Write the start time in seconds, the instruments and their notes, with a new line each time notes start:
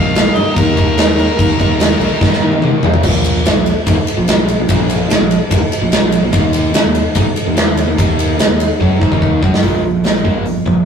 Already playing: fingered electric bass A#1, overdriven electric guitar D#3 A#3 D#4, harmonica F5
0.15 overdriven electric guitar D#3 A#3 D#4, snare, crash
0.35 fingered electric bass G2, overdriven electric guitar D#3 A#3 D#4, harmonica D#5, crash
0.56 fingered electric bass D#2, overdriven electric guitar D#3 A#3 D#4, harmonica A#4, kick, crash
0.77 fingered electric bass D#2, overdriven electric guitar D#3 A#3 D#4, kick, crash
0.98 overdriven electric guitar D#3 A#3 D#4, snare, crash
1.18 overdriven electric guitar D#3 A#3 D#4, crash
1.38 fingered electric bass D#2, overdriven electric guitar D#3 A#3 D#4, kick, crash
1.59 fingered electric bass D#2, overdriven electric guitar D#3 A#3 D#4, kick, crash
1.80 overdriven electric guitar D#3 A#3 D#4, snare, crash
2.00 fingered electric bass A#1, overdriven electric guitar D#3 A#3 D#4, crash
2.21 fingered electric bass D#3, overdriven electric guitar D#3 A#3 D#4, kick, snare
2.33 snare
2.42 fingered electric bass D#3, overdriven electric guitar D#3 A#3 D#4
2.52 high tom
2.62 overdriven electric guitar D#3 A#3 D#4, mid tom
2.83 fingered electric bass C2, overdriven electric guitar D#3 A#3 D#4, floor tom
2.94 floor tom
3.03 fingered electric bass A#1, overdriven electric guitar A#2 F3 A#3, kick, crash
3.24 ride
3.45 fingered electric bass G#1, overdriven electric guitar G#2 D#3, snare, ride
3.55 fingered electric bass A#1, overdriven electric guitar A#2 F3
3.66 ride
3.87 fingered electric bass D#2, overdriven electric guitar D#3 A#3, kick, ride
3.97 muted fingered electric bass stroke, muted overdriven electric guitar stroke
4.07 ride
4.17 fingered electric bass A#1, overdriven electric guitar A#2 F3
4.27 fingered electric bass A#1, overdriven electric guitar A#2 F3, snare, ride
4.38 fingered electric bass A#1, overdriven electric guitar A#2 F3
4.48 ride
4.59 fingered electric bass A#1, overdriven electric guitar A#2 F3
4.69 fingered electric bass A#1, overdriven electric guitar A#2 F3 A#3, kick, ride
4.89 ride
5.10 fingered electric bass G#1, overdriven electric guitar G#2 D#3, snare, ride
5.20 fingered electric bass A#1, overdriven electric guitar A#2 F3
5.31 ride
5.51 fingered electric bass D#2, overdriven electric guitar D#3 A#3, kick, ride
5.61 muted fingered electric bass stroke, muted overdriven electric guitar stroke
5.72 ride
5.81 fingered electric bass A#1, overdriven electric guitar A#2 F3
5.91 fingered electric bass A#1, overdriven electric guitar A#2 F3, snare, ride
6.02 fingered electric bass A#1, overdriven electric guitar A#2 F3
6.12 ride
6.23 fingered electric bass A#1, overdriven electric guitar A#2 F3
6.33 fingered electric bass D#2, overdriven electric guitar D#3 A#3 D#4, kick, ride
6.53 ride
6.74 fingered electric bass C#2, overdriven electric guitar C#3 G#3, snare, ride
6.85 fingered electric bass D#2, overdriven electric guitar D#3 A#3
6.95 ride
7.15 fingered electric bass G#2, overdriven electric guitar G#3 D#4, kick, ride
7.26 muted fingered electric bass stroke, muted overdriven electric guitar stroke
7.36 ride
7.47 fingered electric bass D#2, overdriven electric guitar D#3 A#3
7.56 fingered electric bass D#2, overdriven electric guitar D#3 A#3, snare, ride
7.67 fingered electric bass D#2, overdriven electric guitar D#3 A#3
7.77 ride
7.88 fingered electric bass D#2, overdriven electric guitar D#3 A#3
7.97 fingered electric bass D#2, overdriven electric guitar D#3 A#3 D#4, kick, ride
8.19 ride
8.39 fingered electric bass C#2, overdriven electric guitar C#3 G#3, snare, ride
8.49 fingered electric bass D#2, overdriven electric guitar D#3 A#3
8.60 ride
8.80 fingered electric bass F#2, overdriven electric guitar F#3 C#4 F#4, kick
9.00 fingered electric bass G#2, overdriven electric guitar G#3 D#4, kick
9.11 fingered electric bass D#2, overdriven electric guitar D#3 A#3 D#4, kick
9.22 kick
9.42 fingered electric bass F#2, overdriven electric guitar F#3 C#4 F#4, kick
9.54 snare
9.62 fingered electric bass A#1, overdriven electric guitar A#2 F3 A#3, kick, open hi-hat
9.84 overdriven electric guitar A#2 F3
10.04 overdriven electric guitar A#2 F3, snare, open hi-hat
10.24 fingered electric bass G1, overdriven electric guitar A#2 F3 A#3, kick
10.45 overdriven electric guitar A#2 F3, open hi-hat
10.66 fingered electric bass A#1, overdriven electric guitar A#2 F3, kick